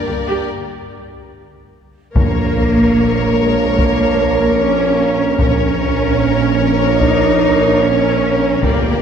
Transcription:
0.00 0.45 A#3 soft
0.00 0.45 D4 soft
0.00 0.46 A#4 soft
0.00 0.46 D5 soft
0.07 0.15 G1 soft
0.07 0.16 G1 soft
0.07 0.16 G2 soft
0.07 0.15 G4 soft
0.28 0.37 G2 soft
0.28 0.47 G4 soft
2.14 5.36 A#1 medium
2.14 3.33 A#2 medium
2.14 5.35 F3 medium
2.14 5.35 A#3 medium
2.14 3.33 A#3 medium
2.14 5.35 A#4 medium
2.14 5.36 A#4 medium
2.14 5.35 C#5 medium
2.14 5.36 C#5 medium
2.14 taiko medium
2.14 sub drop medium
3.38 3.78 G#3 medium
3.78 4.59 A#3 medium
3.78 taiko medium
4.58 5.38 C#4 medium
5.39 8.58 A#1 medium
5.39 8.59 A#1 medium
5.39 8.45 F3 medium
5.39 8.45 A#3 medium
5.39 6.97 C#4 medium
5.39 8.59 A#4 medium
5.39 8.59 C#5 medium
5.39 taiko medium
7.01 7.82 D#4 medium
7.01 taiko medium
7.82 8.63 C#4 medium
8.62 9.02 G1 medium
8.62 9.02 A#2 medium
8.62 9.02 G3 medium
8.62 9.02 A#3 medium
8.62 9.02 G4 medium
8.62 9.02 A#4 medium
8.62 9.02 D5 medium
8.62 taiko medium

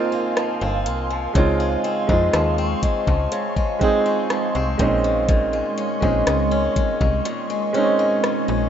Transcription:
0.00 1.45 G#2 medium
0.00 0.36 F3 medium
0.00 0.11 A#3 medium
0.00 1.37 A#3 medium
0.00 0.61 C4 medium
0.00 1.35 C4 medium
0.00 1.36 D#4 medium
0.00 0.18 F4 medium
0.00 1.38 F4 loud
0.00 1.31 A#4 medium
0.00 4.75 F5 medium
0.00 1.31 G#5 medium
0.00 8.69 C6 medium
0.12 0.85 A#3 medium
0.37 1.10 F3 medium
0.37 cross-stick loud
0.37 closed hi-hat medium
0.61 0.88 G1 medium
0.61 1.84 C4 medium
0.86 1.28 C2 medium
0.86 1.45 A#3 medium
0.86 closed hi-hat medium
1.10 2.33 F3 medium
1.33 1.77 C#2 loud
1.33 3.31 C#3 medium
1.33 1.98 G#3 medium
1.33 8.69 G#3 medium
1.33 1.98 C4 medium
1.33 1.99 D#4 medium
1.33 4.76 C#6 medium
1.33 kick loud
1.33 closed hi-hat medium
1.38 2.00 F4 loud
1.60 2.08 G#3 medium
1.84 2.58 C4 medium
1.84 closed hi-hat soft
2.07 2.30 F2 medium
2.07 3.56 G#3 medium
2.07 2.82 G#3 medium
2.07 3.57 C4 medium
2.07 3.57 D#4 medium
2.07 kick medium
2.12 3.58 F4 medium
2.33 2.75 D#2 loud
2.33 3.07 F3 medium
2.33 cross-stick loud
2.33 closed hi-hat medium
2.58 3.81 C4 medium
2.83 3.56 G#3 medium
2.83 kick medium
2.83 closed hi-hat medium
3.07 3.28 C#2 medium
3.07 4.30 F3 medium
3.07 kick medium
3.32 4.79 C#3 medium
3.32 closed hi-hat medium
3.57 4.05 G#3 medium
3.57 kick medium
3.79 4.76 G#3 medium
3.79 4.78 C4 medium
3.79 4.54 C4 medium
3.79 4.80 D#4 medium
3.79 kick medium
3.79 closed hi-hat medium
3.84 4.81 G#4 loud
4.06 5.31 G#3 medium
4.30 5.04 F3 medium
4.30 cross-stick loud
4.30 closed hi-hat medium
4.55 4.76 C2 medium
4.55 5.31 C4 medium
4.78 5.63 A#1 medium
4.78 5.27 A#2 medium
4.78 5.84 G#3 medium
4.78 5.85 C4 medium
4.78 5.86 C#4 medium
4.78 8.69 D#5 medium
4.78 8.69 C#6 medium
4.78 kick medium
4.78 closed hi-hat medium
4.82 5.86 D#4 loud
5.04 6.26 D#3 medium
5.28 7.24 A#2 medium
5.28 kick loud
5.28 closed hi-hat medium
5.53 6.02 G#3 medium
5.78 6.51 C#4 medium
5.78 closed hi-hat medium
6.01 6.23 A#1 medium
6.01 7.49 G#3 medium
6.01 6.76 G#3 medium
6.01 7.50 C4 medium
6.01 7.51 C#4 medium
6.01 kick medium
6.05 7.52 D#4 medium
6.27 6.69 C#2 medium
6.27 7.00 D#3 medium
6.27 cross-stick loud
6.27 closed hi-hat medium
6.51 7.74 C#4 medium
6.76 7.49 G#3 medium
6.76 kick medium
6.76 closed hi-hat medium
7.01 7.22 C2 medium
7.01 8.23 D#3 medium
7.01 kick medium
7.25 8.69 A#2 medium
7.25 closed hi-hat medium
7.50 7.99 G#3 medium
7.73 8.69 G#3 medium
7.73 8.69 C4 medium
7.73 8.48 C#4 medium
7.73 8.69 C#4 medium
7.73 closed hi-hat medium
7.77 8.69 D#4 loud
7.99 8.69 G#3 medium
8.24 8.69 D#3 medium
8.24 cross-stick loud
8.24 closed hi-hat medium
8.48 8.69 A#1 medium
8.48 8.69 C#4 medium

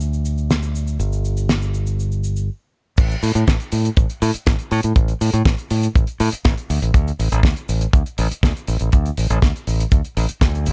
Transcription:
0.00 0.97 D2 medium
0.00 cabasa medium
0.13 cabasa soft
0.25 cabasa medium
0.38 cabasa soft
0.51 snare medium
0.51 cabasa medium
0.63 cabasa soft
0.75 cabasa medium
0.87 cabasa medium
0.99 2.48 G1 medium
0.99 cabasa medium
1.13 cabasa soft
1.25 cabasa medium
1.37 cabasa medium
1.49 snare loud
1.49 cabasa medium
1.62 cabasa soft
1.74 cabasa medium
1.87 cabasa soft
2.00 cabasa medium
2.12 cabasa soft
2.24 cabasa medium
2.36 cabasa soft
2.97 3.14 A1 medium
2.97 kick loud
2.97 closed hi-hat medium
2.97 crash loud
2.97 cabasa medium
3.10 closed hi-hat soft
3.10 cabasa soft
3.22 3.31 A2 medium
3.22 open hi-hat loud
3.22 cabasa medium
3.35 3.43 A2 medium
3.35 closed hi-hat medium
3.35 cabasa medium
3.47 3.56 A1 medium
3.47 kick loud
3.47 snare loud
3.47 closed hi-hat medium
3.47 cabasa medium
3.60 closed hi-hat soft
3.60 cabasa soft
3.72 3.88 A2 medium
3.72 open hi-hat loud
3.72 cabasa medium
3.85 closed hi-hat medium
3.85 cabasa medium
3.97 4.05 A1 medium
3.97 kick loud
3.97 closed hi-hat medium
3.97 cabasa medium
4.10 closed hi-hat medium
4.10 cabasa soft
4.22 4.30 A2 loud
4.22 open hi-hat loud
4.22 cabasa medium
4.34 muted fingered electric bass stroke soft
4.34 closed hi-hat medium
4.34 cabasa medium
4.46 4.55 A1 loud
4.46 kick loud
4.46 snare loud
4.46 closed hi-hat medium
4.46 cabasa medium
4.59 closed hi-hat soft
4.59 cabasa soft
4.71 4.79 A2 loud
4.71 open hi-hat loud
4.71 cabasa medium
4.83 4.92 A2 medium
4.83 closed hi-hat medium
4.83 cabasa medium
4.96 5.12 A1 loud
4.96 kick loud
4.96 closed hi-hat medium
4.96 cabasa medium
5.08 closed hi-hat soft
5.08 cabasa soft
5.21 5.29 A2 medium
5.21 open hi-hat loud
5.21 cabasa medium
5.33 5.41 A2 medium
5.33 closed hi-hat medium
5.33 cabasa medium
5.45 5.54 A1 medium
5.45 kick loud
5.45 snare loud
5.45 closed hi-hat medium
5.45 cabasa medium
5.58 closed hi-hat soft
5.58 cabasa soft
5.71 5.87 A2 medium
5.71 open hi-hat loud
5.71 cabasa medium
5.83 closed hi-hat medium
5.83 cabasa medium
5.96 6.03 A1 medium
5.96 kick loud
5.96 closed hi-hat medium
5.96 cabasa medium
6.07 closed hi-hat soft
6.07 cabasa soft
6.20 6.28 A2 loud
6.20 open hi-hat loud
6.20 cabasa medium
6.32 muted fingered electric bass stroke soft
6.32 closed hi-hat medium
6.32 cabasa medium
6.45 6.53 A1 loud
6.45 kick loud
6.45 snare loud
6.45 closed hi-hat medium
6.45 cabasa medium
6.57 closed hi-hat soft
6.57 cabasa soft
6.70 6.78 D2 loud
6.70 open hi-hat loud
6.70 cabasa medium
6.82 6.90 A1 medium
6.82 closed hi-hat medium
6.82 cabasa soft
6.94 7.10 D2 loud
6.94 kick loud
6.94 closed hi-hat medium
6.94 cabasa medium
7.07 closed hi-hat soft
7.07 cabasa soft
7.19 7.27 A1 medium
7.19 open hi-hat loud
7.19 cabasa medium
7.32 7.40 A1 medium
7.32 closed hi-hat medium
7.32 cabasa medium
7.43 7.52 D2 medium
7.43 kick loud
7.43 snare loud
7.43 closed hi-hat medium
7.43 cabasa medium
7.56 closed hi-hat soft
7.56 cabasa soft
7.69 7.85 A1 medium
7.69 open hi-hat loud
7.69 cabasa medium
7.81 closed hi-hat medium
7.81 cabasa medium
7.93 8.02 D2 medium
7.93 kick loud
7.93 closed hi-hat medium
7.93 cabasa medium
8.06 closed hi-hat soft
8.06 cabasa soft
8.18 8.27 A1 loud
8.18 open hi-hat loud
8.18 cabasa medium
8.32 closed hi-hat medium
8.32 cabasa soft
8.43 8.51 D2 loud
8.43 kick loud
8.43 snare loud
8.43 closed hi-hat medium
8.43 cabasa medium
8.56 closed hi-hat soft
8.56 cabasa soft
8.67 8.76 A1 loud
8.67 open hi-hat medium
8.67 cabasa medium
8.79 8.88 A1 medium
8.79 closed hi-hat medium
8.79 cabasa medium
8.92 9.09 D2 loud
8.92 kick loud
8.92 closed hi-hat medium
8.92 cabasa medium
9.05 closed hi-hat soft
9.05 cabasa soft
9.17 9.26 A1 medium
9.17 open hi-hat loud
9.17 cabasa medium
9.30 9.38 A1 medium
9.30 closed hi-hat medium
9.30 cabasa medium
9.42 9.50 D2 medium
9.42 kick loud
9.42 snare loud
9.42 closed hi-hat medium
9.42 cabasa medium
9.56 closed hi-hat soft
9.56 cabasa soft
9.67 9.83 A1 medium
9.67 open hi-hat loud
9.67 cabasa medium
9.80 closed hi-hat medium
9.80 cabasa medium
9.92 10.00 D2 medium
9.92 kick loud
9.92 closed hi-hat medium
9.92 cabasa medium
10.05 closed hi-hat soft
10.05 cabasa soft
10.17 10.25 A1 loud
10.17 open hi-hat loud
10.17 cabasa medium
10.29 closed hi-hat medium
10.29 cabasa soft
10.41 10.68 D2 loud
10.41 kick loud
10.41 snare loud
10.41 closed hi-hat medium
10.41 cabasa medium
10.55 closed hi-hat soft
10.55 cabasa soft
10.66 10.73 A1 loud
10.66 open hi-hat medium
10.66 cabasa medium

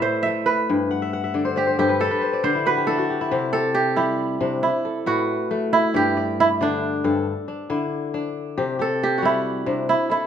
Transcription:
0.00 0.74 A2 medium
0.00 0.84 D4 medium
0.00 0.13 G4 medium
0.00 0.27 A4 medium
0.00 0.92 A4 medium
0.00 1.06 B4 medium
0.00 0.52 C5 medium
0.00 0.70 D5 medium
0.00 0.22 E5 medium
0.23 2.26 A3 medium
0.23 1.26 E5 medium
0.46 1.69 B4 medium
0.70 1.78 G2 medium
0.91 1.13 F#5 medium
1.02 1.23 E5 medium
1.13 1.85 F#5 medium
1.24 2.27 E5 medium
1.34 2.06 D3 medium
1.34 1.56 D5 medium
1.45 1.67 C5 medium
1.56 1.79 G4 medium
1.56 2.33 D5 medium
1.67 1.95 C5 medium
1.79 2.06 G2 medium
1.79 3.20 G4 medium
1.79 3.11 A4 medium
1.89 2.11 B4 medium
2.00 2.72 G4 medium
2.00 2.86 A4 medium
2.11 3.37 B4 medium
2.21 3.40 C5 medium
2.33 3.44 D5 medium
2.44 3.37 D3 medium
2.44 2.88 D4 medium
2.44 2.73 C5 loud
2.55 2.87 E4 medium
2.66 2.98 F#4 medium
2.66 3.89 B4 medium
2.77 3.04 G4 medium
2.87 4.40 D4 medium
2.87 3.21 E4 medium
2.87 3.52 A4 medium
2.98 3.38 F#4 medium
3.10 3.31 G4 medium
3.21 4.78 E4 medium
3.31 4.39 C3 medium
3.31 3.53 G4 medium
3.53 3.97 G4 medium
3.53 4.84 A4 medium
3.74 5.13 G4 medium
3.96 4.68 G3 medium
3.96 4.62 E4 medium
3.96 5.38 G4 medium
4.41 4.68 C3 medium
4.41 6.09 D4 medium
4.63 5.72 E4 medium
4.85 6.17 A4 medium
5.06 6.00 A2 medium
5.06 6.02 F#4 loud
5.06 6.29 B4 medium
5.51 7.50 A3 medium
5.73 6.40 E4 medium
5.94 7.03 G2 medium
5.94 7.37 G4 loud
5.94 6.16 D5 medium
6.17 6.60 D5 medium
6.40 6.46 E4 loud
6.61 7.31 D3 medium
6.61 8.30 D4 medium
6.61 7.72 D5 medium
7.04 7.31 G2 medium
7.04 8.36 A4 medium
7.48 8.14 D4 medium
7.70 8.62 D3 medium
7.70 9.27 E4 medium
8.14 9.66 D4 medium
8.58 9.65 C3 medium
8.58 8.79 G4 medium
8.79 9.22 G4 medium
8.79 10.13 A4 medium
9.03 9.24 G4 medium
9.18 10.27 F#4 medium
9.22 9.94 G3 medium
9.22 9.89 E4 medium
9.22 10.27 G4 medium
9.66 9.94 C3 medium
9.66 10.27 D4 medium
9.89 10.11 E4 medium
10.10 10.27 E4 medium
10.10 10.27 A4 medium

